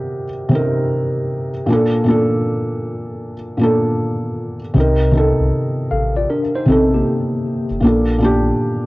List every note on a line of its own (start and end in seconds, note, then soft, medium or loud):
0.00 0.49 C3 medium
0.00 0.51 C4 medium
0.00 0.53 D#4 medium
0.00 1.70 F4 medium
0.00 1.70 F#4 medium
0.00 0.29 G4 medium
0.00 0.55 A#4 medium
0.00 1.70 D5 medium
0.49 1.48 C3 medium
0.49 1.49 C4 medium
0.53 1.50 D#4 medium
0.53 1.51 A#4 medium
1.66 2.00 A#2 medium
1.66 2.01 A#3 medium
1.70 2.02 D4 medium
1.70 2.03 A4 medium
2.04 3.31 A#2 medium
2.04 3.32 A#3 medium
2.08 3.33 D4 medium
2.08 3.34 A4 medium
3.57 4.56 A#2 medium
3.57 4.57 A#3 medium
3.61 4.58 D4 medium
3.61 4.59 A4 medium
4.74 5.33 C2 loud
4.74 5.08 C3 medium
4.74 5.09 C4 medium
4.74 5.10 D#4 medium
4.80 5.11 A#4 medium
5.11 6.39 C3 medium
5.11 6.40 C4 medium
5.11 6.41 D#4 medium
5.17 6.42 A4 medium
5.40 5.51 C2 loud
5.91 6.26 A1 medium
5.91 6.15 A4 medium
5.91 6.15 F5 medium
6.17 6.29 F4 medium
6.17 6.29 D5 medium
6.30 6.54 D4 medium
6.30 6.54 A#4 medium
6.55 6.68 D#4 medium
6.55 6.68 C5 medium
6.65 7.03 A#1 medium
6.65 7.64 C3 medium
6.65 7.65 C4 medium
6.65 6.92 A4 medium
6.70 6.93 C4 medium
6.70 7.66 D#4 medium
6.70 7.67 A4 medium
6.94 7.80 A#3 medium
6.94 7.80 G4 medium
7.71 7.82 F1 loud
7.80 8.52 A#1 loud
7.80 8.15 A#2 medium
7.80 8.16 A#3 medium
7.80 8.17 D4 medium
7.86 8.18 A4 medium
8.18 8.86 A#2 medium
8.18 8.86 A#3 medium
8.22 8.86 D4 medium
8.22 8.86 G4 medium